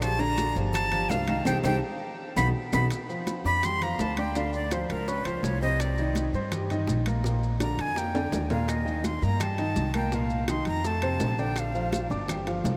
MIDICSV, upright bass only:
0, 0, Header, 1, 2, 480
1, 0, Start_track
1, 0, Key_signature, -2, "major"
1, 0, Tempo, 360794
1, 28, Time_signature, 4, 2, 24, 8
1, 16988, End_track
2, 0, Start_track
2, 0, Title_t, "Upright bass"
2, 0, Program_c, 0, 32
2, 0, Note_on_c, 0, 34, 103
2, 665, Note_off_c, 0, 34, 0
2, 740, Note_on_c, 0, 31, 94
2, 1416, Note_off_c, 0, 31, 0
2, 1463, Note_on_c, 0, 36, 91
2, 1915, Note_off_c, 0, 36, 0
2, 1948, Note_on_c, 0, 36, 96
2, 2129, Note_off_c, 0, 36, 0
2, 2187, Note_on_c, 0, 36, 105
2, 2369, Note_off_c, 0, 36, 0
2, 3142, Note_on_c, 0, 35, 94
2, 3328, Note_off_c, 0, 35, 0
2, 3624, Note_on_c, 0, 35, 107
2, 3809, Note_off_c, 0, 35, 0
2, 4581, Note_on_c, 0, 41, 95
2, 5260, Note_off_c, 0, 41, 0
2, 5301, Note_on_c, 0, 38, 102
2, 6434, Note_off_c, 0, 38, 0
2, 6514, Note_on_c, 0, 37, 89
2, 6964, Note_off_c, 0, 37, 0
2, 6985, Note_on_c, 0, 37, 70
2, 7216, Note_off_c, 0, 37, 0
2, 7221, Note_on_c, 0, 36, 105
2, 8354, Note_off_c, 0, 36, 0
2, 8422, Note_on_c, 0, 43, 89
2, 9100, Note_off_c, 0, 43, 0
2, 9146, Note_on_c, 0, 34, 101
2, 10276, Note_off_c, 0, 34, 0
2, 10342, Note_on_c, 0, 41, 90
2, 11020, Note_off_c, 0, 41, 0
2, 11066, Note_on_c, 0, 39, 89
2, 12194, Note_off_c, 0, 39, 0
2, 12268, Note_on_c, 0, 43, 95
2, 12941, Note_off_c, 0, 43, 0
2, 12989, Note_on_c, 0, 36, 99
2, 14113, Note_off_c, 0, 36, 0
2, 14184, Note_on_c, 0, 41, 97
2, 14856, Note_off_c, 0, 41, 0
2, 14899, Note_on_c, 0, 34, 96
2, 16023, Note_off_c, 0, 34, 0
2, 16096, Note_on_c, 0, 31, 103
2, 16767, Note_off_c, 0, 31, 0
2, 16820, Note_on_c, 0, 36, 100
2, 16988, Note_off_c, 0, 36, 0
2, 16988, End_track
0, 0, End_of_file